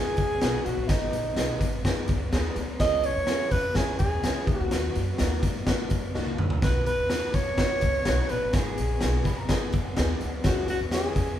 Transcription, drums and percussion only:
0.17 kick, closed hi-hat
0.41 snare, closed hi-hat
0.66 closed hi-hat
0.89 kick, snare, closed hi-hat
1.13 closed hi-hat
1.37 snare, closed hi-hat
1.61 kick, closed hi-hat
1.85 kick, snare, closed hi-hat
2.08 kick, closed hi-hat
2.32 snare, closed hi-hat
2.56 closed hi-hat
2.80 kick, snare, closed hi-hat
3.03 closed hi-hat
3.27 snare, closed hi-hat
3.51 kick, snare, closed hi-hat
3.75 kick, snare, closed hi-hat
3.99 kick, closed hi-hat
4.23 snare, closed hi-hat
4.47 kick, closed hi-hat
4.71 snare, closed hi-hat
4.95 closed hi-hat
5.18 snare, closed hi-hat
5.43 kick, snare, closed hi-hat
5.67 kick, snare, closed hi-hat
5.90 kick, closed hi-hat
6.15 snare
6.26 high tom
6.38 mid tom
6.50 floor tom
6.62 kick, snare, closed hi-hat
6.86 closed hi-hat
7.10 snare, closed hi-hat
7.34 kick, snare, closed hi-hat
7.58 kick, snare, closed hi-hat
7.81 kick, closed hi-hat
8.05 snare, closed hi-hat
8.29 closed hi-hat
8.53 kick, snare, closed hi-hat
8.78 closed hi-hat
9.01 snare, closed hi-hat
9.25 kick, snare, closed hi-hat
9.49 kick, snare, closed hi-hat
9.72 kick, closed hi-hat
9.96 snare, closed hi-hat
10.21 closed hi-hat
10.44 kick, snare, closed hi-hat
10.68 closed hi-hat
10.91 snare, closed hi-hat
11.16 kick, snare, closed hi-hat

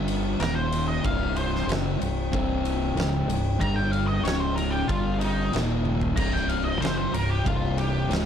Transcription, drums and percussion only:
0.08 ride
0.40 snare, ride
0.72 ride
1.04 kick, ride
1.36 ride
1.56 snare
1.69 snare, ride
2.02 ride
2.33 kick, ride
2.65 ride
2.97 snare, ride
3.30 ride
3.61 kick, ride
3.93 ride
4.25 snare, ride
4.58 ride
4.89 kick, ride
5.21 ride
5.53 snare, ride
5.85 high tom
6.01 floor tom
6.17 kick, ride, crash
6.36 snare
6.49 ride
6.82 snare, ride
7.14 ride
7.46 kick, ride
7.78 ride
8.11 snare, ride

